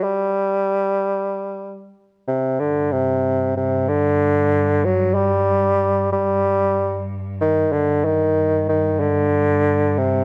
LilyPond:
<<
  \new Staff \with { instrumentName = "Bassoon" } { \clef bass \time 4/4 \tempo 4 = 94 g2. r8 c8 | d8 c4 c8 d4. fis8 | g4. g4. r8 ees8 | d8 ees4 ees8 d4. c8 | }
  \new Staff \with { instrumentName = "Cello" } { \clef bass \time 4/4 r1 | g,1~ | g,1 | g,1 | }
>>